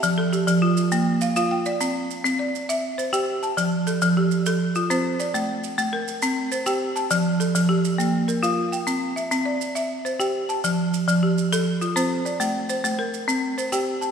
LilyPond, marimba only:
\new Staff \with { instrumentName = "Marimba" } { \time 12/8 \key c \mixolydian \tempo 4. = 136 << { <e'' a''>8 a'8 g'4 f'4. r8 f''8 f''8 g''8 d''8~ | d''8 r4. d''4. r8 c''8 g''4 a''8~ | a''8 r8 a'4 g'4. r8 f'8 c''4 d''8~ | d''8 r4. bes'4. r8 c''8 g''4 a''8~ |
a''8 r8 a'4 g'4. r8 bes'8 f''4 g''8~ | g''8 r8 e''4 d''4. r8 c''8 g''4 a''8~ | a''8 r4. g'4. r8 f'8 c''4 d''8~ | d''8 r8 c''4 bes'4. r8 c''8 g''4 a''8 | } \\ { f4 r8 f4 r8 bes4 r8 f'4 r8 | c'4 r8 c'4 r8 e''4 r8 g'4 r8 | f4 r8 f4 r8 a'4 r8 c'4 r8 | a4 r8 a4 r8 c'4 r8 g'4 r8 |
f4 r8 f4 r8 bes4 r8 f'4 r8 | c'4 r8 c'4 r8 e''4 r8 g'4 r8 | f4 r8 f4 r8 a'4 r8 c'4 r8 | a4 r8 a4 r8 c'4 r8 g'4 r8 | } >> }